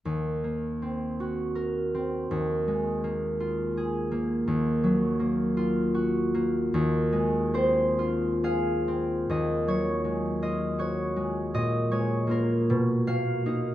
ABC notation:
X:1
M:6/8
L:1/8
Q:3/8=53
K:Ebdor
V:1 name="Harp"
z6 | z6 | z6 | z2 c2 f2 |
e d2 e d2 | e d B2 ^e2 |]
V:2 name="Harp"
E,, B, C G B C | E,, A, B, F A B, | E,, G, B, F G B, | E,, A, C F A C |
E,, G, A, F G A, | B,, A, [B,F] =B,, ^A, [A,^D] |]